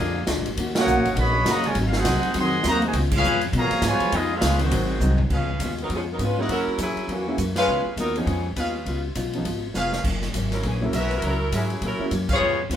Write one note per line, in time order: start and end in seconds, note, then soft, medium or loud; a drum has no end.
0.00 0.26 F2 loud
0.00 0.17 A#2 medium
0.00 0.28 D3 loud
0.00 0.18 F3 medium
0.00 0.28 F3 medium
0.00 0.18 G#3 medium
0.00 0.28 A#3 medium
0.00 0.18 D4 medium
0.00 0.29 G#4 medium
0.00 0.29 D5 medium
0.00 0.29 F5 medium
0.00 0.29 A#5 loud
0.27 0.39 D2 medium
0.27 0.47 A#2 medium
0.27 0.47 F3 medium
0.27 0.48 G#3 medium
0.27 0.48 D4 medium
0.27 snare medium
0.27 hi-hat pedal medium
0.27 ride medium
0.37 0.47 A#1 medium
0.46 0.56 G#1 medium
0.46 ride medium
0.56 0.86 D#2 medium
0.56 0.76 D#3 medium
0.56 0.77 A#3 medium
0.56 0.77 C#4 medium
0.56 0.78 F#4 medium
0.56 ride medium
0.75 1.14 A#3 medium
0.75 1.14 C#4 medium
0.75 1.15 D#4 medium
0.75 1.14 F#4 medium
0.75 1.15 A#4 medium
0.75 1.15 C#5 medium
0.75 1.15 F#5 loud
0.75 snare loud
0.75 ride medium
0.86 0.96 B1 medium
0.86 1.06 D#3 medium
0.86 1.06 A#3 medium
0.86 1.06 C#4 medium
0.86 1.07 F#4 medium
0.86 hi-hat pedal medium
0.96 1.05 A#1 medium
1.05 1.15 F#1 medium
1.05 ride medium
1.16 1.44 A#1 loud
1.16 1.47 C#3 medium
1.16 1.35 D#3 medium
1.16 1.47 F#3 medium
1.16 1.36 A#3 soft
1.16 1.46 B3 medium
1.16 1.36 C#4 medium
1.16 1.36 F#4 medium
1.16 1.47 F#4 medium
1.16 1.47 C#5 medium
1.16 1.47 D#5 medium
1.16 1.47 B5 loud
1.16 ride medium
1.45 1.74 F#1 medium
1.45 1.65 D#3 medium
1.45 1.65 A#3 medium
1.45 1.65 C#4 medium
1.45 1.65 F#4 medium
1.45 snare medium
1.45 hi-hat pedal medium
1.45 ride medium
1.49 1.65 C#3 loud
1.49 1.65 F#3 medium
1.49 1.65 A#3 medium
1.49 1.66 F#4 loud
1.49 1.65 C#5 medium
1.49 1.66 D#5 loud
1.49 1.66 A#5 loud
1.64 1.77 F4 medium
1.64 1.77 A#4 medium
1.64 1.77 C#5 medium
1.64 1.77 G#5 loud
1.64 ride medium
1.68 1.77 G#3 medium
1.75 2.03 G#1 loud
1.75 1.94 G#2 medium
1.75 1.95 F#3 medium
1.75 1.95 C4 medium
1.75 1.96 D#4 medium
1.75 ride medium
1.87 1.95 F5 medium
1.93 2.36 C4 medium
1.93 2.36 D#4 medium
1.93 2.36 F#4 medium
1.93 snare medium
1.97 2.37 D#4 loud
1.97 2.37 G#4 loud
1.97 2.36 C5 loud
1.97 2.37 F#5 loud
2.04 2.21 C2 medium
2.04 2.24 G#2 medium
2.04 2.24 F#3 medium
2.04 2.24 C4 medium
2.04 2.25 D#4 medium
2.04 snare medium
2.04 hi-hat pedal medium
2.04 ride medium
2.23 ride soft
2.34 2.63 F2 loud
2.34 2.54 G#2 medium
2.34 2.64 D#3 medium
2.34 2.54 F#3 medium
2.34 2.64 F#3 medium
2.34 2.54 C4 medium
2.34 2.64 C4 loud
2.34 2.55 D#4 medium
2.34 ride medium
2.39 2.64 G#4 medium
2.39 2.65 D#5 medium
2.39 2.64 F#5 medium
2.39 2.64 C6 loud
2.63 2.93 D#2 medium
2.63 2.84 G#2 medium
2.63 2.84 F#3 medium
2.63 2.82 A#3 medium
2.63 2.84 C4 medium
2.63 2.85 D#4 medium
2.63 snare medium
2.63 hi-hat pedal medium
2.63 ride medium
2.68 2.83 F#4 loud
2.68 2.83 C5 medium
2.68 2.83 D#5 loud
2.68 2.83 A#5 loud
2.82 2.95 C3 medium
2.82 2.95 D#3 medium
2.82 2.95 G#3 medium
2.82 ride soft
2.87 2.96 F#4 medium
2.87 2.96 C5 medium
2.87 2.96 D#5 medium
2.87 2.96 G#5 loud
2.93 3.22 C#2 medium
2.93 3.13 C#3 medium
2.93 3.14 G#3 medium
2.93 3.14 B3 medium
2.93 3.14 F4 medium
2.93 ride medium
3.11 3.40 G#3 medium
3.11 3.41 B3 medium
3.11 3.41 F4 medium
3.11 kick medium
3.11 crash loud
3.16 3.42 C#4 loud
3.16 3.42 G#4 medium
3.16 3.42 B4 loud
3.16 3.42 F5 loud
3.23 3.52 F2 loud
3.23 3.43 C#3 medium
3.23 3.43 G#3 medium
3.23 3.43 B3 medium
3.23 3.44 F4 medium
3.23 hi-hat pedal medium
3.41 ride medium
3.53 3.69 B2 loud
3.53 3.82 B2 medium
3.53 3.72 C#3 medium
3.53 3.82 F3 medium
3.53 3.73 G#3 medium
3.53 3.82 A#3 medium
3.53 3.73 B3 medium
3.53 3.73 F4 medium
3.53 ride medium
3.58 3.83 G#4 medium
3.58 3.83 C#5 medium
3.58 3.83 F5 medium
3.58 3.83 A#5 loud
3.71 muted upright bass stroke soft
3.71 ride medium
3.81 3.99 G#2 medium
3.81 4.02 C#3 medium
3.81 4.02 G#3 medium
3.81 4.02 B3 medium
3.81 4.03 F4 medium
3.81 snare medium
3.81 hi-hat pedal medium
3.81 ride medium
3.86 4.14 B2 medium
3.86 4.14 F3 medium
3.86 4.14 G#3 medium
3.86 4.15 F4 loud
3.86 4.15 B4 medium
3.86 4.15 C#5 loud
3.86 4.15 G#5 loud
4.00 muted upright bass stroke soft
4.00 ride medium
4.11 4.41 F2 medium
4.11 4.31 C#3 medium
4.11 4.32 G#3 medium
4.11 4.32 B3 medium
4.11 4.33 D#4 medium
4.11 4.32 F4 medium
4.11 ride medium
4.16 4.34 B3 medium
4.16 4.34 F4 medium
4.16 4.34 G#4 medium
4.16 4.34 D#5 loud
4.34 4.61 G#3 medium
4.34 4.60 B3 medium
4.34 4.62 C#4 medium
4.34 4.60 F4 medium
4.34 4.62 G#4 loud
4.34 4.62 B4 medium
4.34 4.62 F5 loud
4.41 4.70 C#2 loud
4.41 4.61 C#3 medium
4.41 4.61 G#3 medium
4.41 4.61 B3 medium
4.41 4.62 F4 medium
4.41 snare loud
4.41 hi-hat pedal medium
4.41 ride medium
4.59 5.15 D#3 medium
4.59 5.15 F#3 medium
4.59 5.15 C4 medium
4.59 5.17 C5 medium
4.59 ride medium
4.64 5.17 G#3 medium
4.64 5.17 D#4 medium
4.64 5.17 F#4 medium
4.70 4.99 G#1 loud
4.70 4.90 G#2 medium
4.70 4.90 F#3 medium
4.70 4.91 C4 soft
4.70 4.91 D#4 medium
4.70 ride medium
5.00 5.29 C2 loud
5.00 5.20 G#2 medium
5.00 5.20 F#3 medium
5.00 5.20 C4 medium
5.00 5.21 D#4 medium
5.00 hi-hat pedal medium
5.18 floor tom medium
5.30 5.58 C#2 medium
5.30 5.50 C#3 medium
5.30 5.50 G#3 medium
5.30 5.50 B3 medium
5.30 5.51 F4 medium
5.30 5.75 G#4 medium
5.30 5.75 B4 medium
5.30 5.75 C#5 medium
5.30 5.75 F5 medium
5.30 kick medium
5.30 crash medium
5.59 5.88 D#2 medium
5.59 5.80 C#3 medium
5.59 5.80 G#3 medium
5.59 5.80 B3 medium
5.59 hi-hat pedal medium
5.59 ride medium
5.63 5.81 F4 medium
5.78 5.91 B3 medium
5.78 ride soft
5.82 5.91 F#3 medium
5.82 5.91 D#4 medium
5.82 5.91 A#4 medium
5.89 6.18 F2 medium
5.89 6.09 C#3 soft
5.89 6.10 G#3 soft
5.89 6.10 B3 medium
5.89 6.10 F4 soft
5.89 ride medium
5.95 6.02 F3 medium
5.95 6.02 B3 medium
5.95 6.02 C#4 medium
5.95 6.02 G#4 medium
6.12 6.21 F#3 medium
6.12 6.21 B3 medium
6.12 6.21 D#4 medium
6.12 6.21 A#4 medium
6.18 6.48 G#2 medium
6.18 6.39 C#3 medium
6.18 6.39 G#3 medium
6.18 6.40 B3 medium
6.18 6.40 F4 medium
6.18 hi-hat pedal soft
6.18 ride medium
6.23 6.39 G#3 medium
6.23 6.39 C#4 medium
6.23 6.39 F4 medium
6.23 6.39 B4 loud
6.38 6.77 F#3 medium
6.38 6.50 F#3 medium
6.38 6.77 G#3 medium
6.38 6.77 A#3 medium
6.38 6.50 B3 medium
6.38 6.77 C#4 medium
6.38 6.50 D#4 medium
6.38 6.77 E4 medium
6.38 6.49 F#4 medium
6.38 6.48 A#4 medium
6.38 6.50 A#4 medium
6.38 6.48 C#5 medium
6.38 6.77 F#5 medium
6.49 6.65 F#2 medium
6.49 6.68 F#2 soft
6.49 6.69 E3 soft
6.49 6.78 F#3 medium
6.49 6.69 A#3 medium
6.49 6.69 C#4 medium
6.49 6.78 C#4 medium
6.49 6.78 E4 medium
6.49 6.62 F#4 medium
6.49 6.61 A#4 medium
6.49 6.78 A#4 loud
6.49 6.62 C#5 medium
6.49 6.62 E5 medium
6.49 ride medium
6.67 muted upright bass stroke soft
6.78 6.95 F2 medium
6.78 6.97 F#2 medium
6.78 6.98 E3 medium
6.78 7.07 F#3 medium
6.78 6.98 A#3 medium
6.78 6.98 C#4 medium
6.78 7.07 C#4 medium
6.78 7.07 E4 medium
6.78 7.07 G#4 medium
6.78 hi-hat pedal medium
6.78 ride medium
6.96 muted upright bass stroke soft
6.96 ride soft
7.07 7.37 E2 medium
7.07 7.28 F#2 soft
7.07 7.28 E3 soft
7.07 7.39 E3 medium
7.07 7.39 A#3 medium
7.07 7.29 A#3 medium
7.07 7.39 C#4 medium
7.07 7.29 C#4 medium
7.07 7.39 F#4 medium
7.07 ride medium
7.28 7.37 F#3 medium
7.28 7.38 G#3 medium
7.28 7.38 A#3 medium
7.28 7.38 C#4 medium
7.28 7.38 E4 medium
7.37 7.56 F#2 medium
7.37 7.67 F#2 medium
7.37 7.57 E3 medium
7.37 7.57 A#3 medium
7.37 7.58 C#4 medium
7.37 hi-hat pedal medium
7.37 ride medium
7.55 7.85 G#3 medium
7.55 7.85 C#4 medium
7.55 7.84 F4 medium
7.55 7.95 G#4 medium
7.55 7.95 B4 medium
7.55 7.85 B4 loud
7.55 7.95 C#5 medium
7.55 7.95 F5 loud
7.55 snare medium
7.55 ride medium
7.66 7.84 C#2 medium
7.66 7.86 C#3 soft
7.66 7.87 G#3 soft
7.66 7.87 B3 medium
7.66 7.87 F4 medium
7.85 muted upright bass stroke soft
7.96 8.25 D#2 medium
7.96 8.16 C#3 medium
7.96 8.15 F#3 medium
7.96 8.17 G#3 medium
7.96 8.17 B3 medium
7.96 8.15 B3 medium
7.96 8.15 D#4 medium
7.96 8.17 F4 medium
7.96 8.15 A#4 loud
7.96 hi-hat pedal medium
7.96 ride medium
8.16 8.26 F3 medium
8.16 8.46 F3 medium
8.16 8.26 G#3 medium
8.16 8.27 B3 medium
8.16 8.46 B3 medium
8.16 8.27 C#4 medium
8.16 8.46 C#4 medium
8.16 8.27 D#4 medium
8.16 8.46 G#4 medium
8.16 ride soft
8.26 8.55 F2 loud
8.26 8.46 C#3 soft
8.26 8.46 G#3 medium
8.26 8.47 B3 soft
8.26 8.47 F4 soft
8.26 ride medium
8.56 8.85 D#2 medium
8.56 8.75 C#3 medium
8.56 8.76 G#3 medium
8.56 8.76 B3 medium
8.56 8.76 F4 medium
8.56 9.01 G#4 medium
8.56 9.00 B4 medium
8.56 9.00 C#5 medium
8.56 9.01 F5 medium
8.56 hi-hat pedal medium
8.56 ride medium
8.85 9.14 C#2 medium
8.85 9.05 C#3 soft
8.85 9.05 G#3 soft
8.85 9.06 B3 soft
8.85 9.06 F4 medium
8.85 ride medium
9.15 9.44 B1 medium
9.15 9.34 C#3 medium
9.15 9.35 G#3 medium
9.15 9.35 B3 medium
9.15 9.35 F4 medium
9.15 hi-hat pedal medium
9.15 ride medium
9.33 9.45 F3 medium
9.33 9.45 G#3 medium
9.33 9.45 B3 medium
9.33 9.45 C#4 medium
9.33 9.45 D#4 medium
9.33 ride soft
9.44 9.74 G#1 medium
9.44 9.64 C#3 soft
9.44 9.64 G#3 soft
9.44 9.65 B3 medium
9.44 9.65 F4 medium
9.44 ride medium
9.74 10.03 F1 medium
9.74 9.94 C#3 medium
9.74 9.95 G#3 medium
9.74 9.95 B3 medium
9.74 9.95 F4 medium
9.74 10.04 G#4 medium
9.74 10.04 B4 medium
9.74 10.04 C#5 medium
9.74 10.04 F5 loud
9.74 snare soft
9.74 hi-hat pedal medium
9.93 snare medium
10.04 10.33 F#1 medium
10.04 10.24 F#2 soft
10.04 10.24 E3 medium
10.04 10.24 A#3 medium
10.04 10.25 C#4 medium
10.04 kick medium
10.04 crash medium
10.22 snare soft
10.22 ride soft
10.34 10.63 G#1 medium
10.34 10.53 F#2 medium
10.34 10.53 E3 medium
10.34 10.54 A#3 medium
10.34 10.54 C#4 medium
10.34 hi-hat pedal medium
10.34 ride medium
10.52 10.64 F#3 medium
10.52 10.64 C#4 medium
10.52 10.64 E4 medium
10.52 10.64 A#4 medium
10.52 snare soft
10.52 ride soft
10.63 10.92 A#1 loud
10.63 10.83 F#2 soft
10.63 10.83 E3 medium
10.63 10.82 E3 medium
10.63 10.83 A#3 soft
10.63 10.83 A#3 medium
10.63 10.83 C#4 medium
10.63 10.84 C#4 soft
10.63 10.83 G#4 medium
10.63 ride medium
10.81 10.92 F#3 medium
10.81 10.94 F#3 medium
10.81 10.92 G#3 medium
10.81 10.92 A#3 medium
10.81 10.92 C#4 medium
10.81 10.94 C#4 medium
10.81 10.92 E4 medium
10.81 10.94 E4 medium
10.81 10.94 A#4 medium
10.93 11.22 B1 medium
10.93 11.12 F#2 medium
10.93 11.12 E3 medium
10.93 11.13 G#3 medium
10.93 11.13 A#3 medium
10.93 11.13 C#4 medium
10.93 11.13 E4 medium
10.93 11.37 F#4 loud
10.93 11.37 A#4 medium
10.93 11.13 B4 medium
10.93 11.37 C#5 medium
10.93 11.37 E5 loud
10.93 hi-hat pedal soft
10.93 ride medium
10.97 11.13 C#4 medium
11.11 11.24 F#3 medium
11.11 11.23 C#4 medium
11.11 11.24 E4 medium
11.11 11.24 A#4 medium
11.11 ride soft
11.22 11.51 C#2 medium
11.22 11.41 F#2 medium
11.22 11.42 E3 medium
11.22 11.52 F#3 medium
11.22 11.42 A#3 soft
11.22 11.43 C#4 medium
11.22 11.52 C#4 medium
11.22 ride medium
11.26 11.52 E4 medium
11.26 11.52 A#4 loud
11.52 11.71 F#2 medium
11.52 11.81 G#2 medium
11.52 11.72 E3 medium
11.52 11.82 F#3 medium
11.52 11.72 A#3 medium
11.52 11.72 C#4 medium
11.52 11.81 C#4 medium
11.52 11.82 E4 medium
11.52 11.64 F#4 medium
11.52 11.81 G#4 medium
11.52 11.64 A#4 medium
11.52 11.64 C#5 medium
11.52 11.64 E5 medium
11.52 hi-hat pedal medium
11.52 ride medium
11.70 ride soft
11.81 12.00 F#2 soft
11.81 11.98 A#2 medium
11.81 12.01 E3 medium
11.81 12.02 A#3 soft
11.81 12.02 C#4 medium
11.81 12.11 E4 medium
11.81 ride medium
11.85 12.11 F#3 medium
11.85 12.11 C#4 medium
11.85 12.11 A#4 medium
11.99 12.10 F#3 medium
11.99 12.10 G#3 medium
11.99 12.10 A#3 medium
11.99 12.11 C#4 medium
11.99 12.11 E4 medium
11.99 muted upright bass stroke soft
12.11 12.39 F#2 medium
12.11 12.30 F#2 medium
12.11 12.31 E3 medium
12.11 12.31 A#3 medium
12.11 12.31 C#4 medium
12.11 hi-hat pedal soft
12.11 ride medium
12.29 12.37 G#4 medium
12.29 12.59 G#4 loud
12.29 12.37 B4 medium
12.29 12.37 C#5 medium
12.29 12.59 C#5 loud
12.29 12.37 F5 loud
12.29 kick medium
12.29 crash medium
12.33 12.59 B3 medium
12.33 12.59 F4 medium
12.40 12.69 F2 medium
12.40 12.60 C#3 medium
12.40 12.60 G#3 soft
12.40 12.61 B3 medium
12.40 12.61 F4 medium
12.69 12.76 D#2 medium
12.69 12.76 C#3 medium
12.69 12.76 G#3 medium
12.69 12.76 B3 medium
12.69 12.76 C#4 medium
12.69 12.76 F4 medium
12.69 12.76 B4 medium
12.69 hi-hat pedal medium
12.69 ride medium